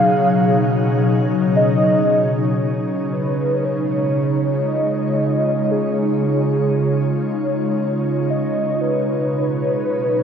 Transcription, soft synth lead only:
Already playing: F5
1.56 D#5
3.13 B4
3.64 C#5
4.68 D#5
5.71 G#4
8.30 D#5
8.81 B4

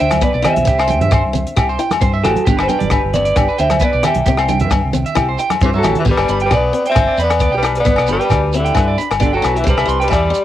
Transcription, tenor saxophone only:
5.65 E3
5.75 F#3
6.00 E3
6.11 G3
6.45 G3
6.56 B3
6.91 C4
7.24 B3
7.57 G3
7.80 B3
8.12 G3
8.58 D3
9.23 D3
9.36 F#3
9.59 E3
9.70 G3
10.03 G3
10.15 G3

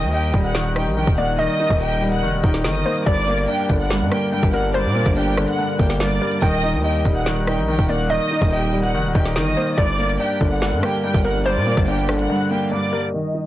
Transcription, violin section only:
Already playing: D#5 D#6
0.13 G4 G5
0.44 F#5 F#6
0.76 G4 G5
0.97 G4 G5
1.18 F#5 F#6
1.39 D#5 D#6
1.81 G4 G5
2.12 F#5 F#6
2.43 G4 G5
2.65 D#5 D#6
3.07 D5 D6
3.49 G4 G5
3.80 F#5 F#6
4.12 G4 G5
4.33 G4 G5
4.53 F#5 F#6
4.75 D5 D6
5.16 G4 G5
5.48 F#5 F#6
5.80 G4 G5
6.01 D5 D6
6.42 D#5 D#6
6.85 G4 G5
7.16 F#5 F#6
7.47 G4 G5
7.68 G4 G5
7.89 F#5 F#6
8.10 D#5 D#6
8.52 G4 G5
8.84 F#5 F#6
9.15 G4 G5
9.36 D#5 D#6
9.78 D5 D6
10.20 G4 G5
10.51 F#5 F#6
10.83 G4 G5
11.04 G4 G5
11.25 F#5 F#6
11.46 D5 D6
11.88 G4 G5
12.19 F#5 F#6
12.51 G4 G5
12.72 D5 D6
13.14 D#5 D#6

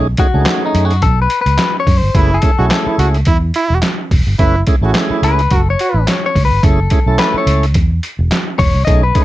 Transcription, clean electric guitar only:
0.20 F#4
0.66 D#4
0.85 F#4
1.03 A4
1.22 B4
1.41 B4
1.80 C#5
1.97 C5
2.16 B4
2.34 A4
5.24 B4
5.70 C#5
5.89 B4
6.07 C#5
6.26 C#5
6.45 B4
6.64 A4
7.19 B4
7.38 C#5
8.59 C#5
8.85 D#5
9.03 B4

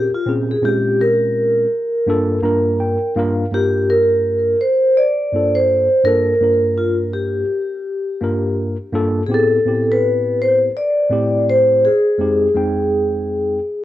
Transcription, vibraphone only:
0.15 F4
0.51 G#4
0.65 G4
1.01 A#4
3.54 G4
3.90 A#4
4.61 C5
4.97 D5
5.55 C5
6.05 A#4
6.78 F4
7.13 G4
9.26 G#4
9.34 A4
9.92 B4
10.42 C5
10.77 D5
11.50 C5
11.85 G#4

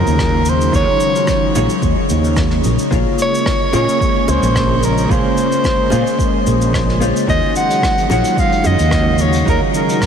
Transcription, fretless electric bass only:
0.07 D#2
0.73 D#2
1.56 A#1
1.82 D#2
2.10 D#2
2.64 A#1
2.92 A#1
3.73 A#2
4.28 C#2
4.42 A#1
5.09 A#1
5.92 A#2
6.47 A#1
7.28 D#2
8.10 A#1
8.65 F#2
8.79 D#2
9.47 D#2

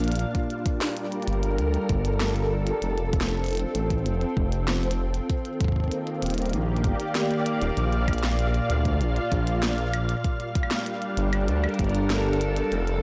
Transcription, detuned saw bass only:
Already playing: A#1
1.28 G1
1.58 D2
1.89 G1
2.82 F1
3.75 A1
4.06 F1
4.37 F1
6.22 D#1
6.53 A#1
6.84 G1
7.62 D#1
7.77 A#1
8.70 D2
9.01 A#1
9.32 A#1
11.17 G1
11.48 D2
11.79 G1
12.72 F1

